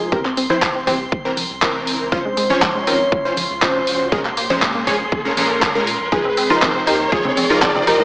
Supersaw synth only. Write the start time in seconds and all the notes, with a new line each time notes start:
0.12 E3 C4 A#4
0.50 E3 C4 C5
0.87 E3 C4 G4
1.25 E3 C4 A#4
1.62 E3 C4 A#4
2.12 F3 C#4 C5
2.50 F3 C#4 C#5
2.87 F3 C#4 A#4
3.25 F3 C#4 C5
3.62 F3 C#4 C5
4.12 A#2 G#3 C#4 A#4
4.50 A#2 G#3 C#4 C5
4.87 A#2 G#3 C#4 G#4
5.25 A#2 G#3 C#4 A#4
5.37 A#2 G#3 C#4 A#4
5.75 A#2 G#3 C#4 A#4
6.12 F3 D#4 G#4
6.50 F3 D#4 A#4
6.87 F3 D#4 G4
7.12 F3 D#4 G#4
7.50 F3 D#4 A#4
7.87 F3 D#4 G4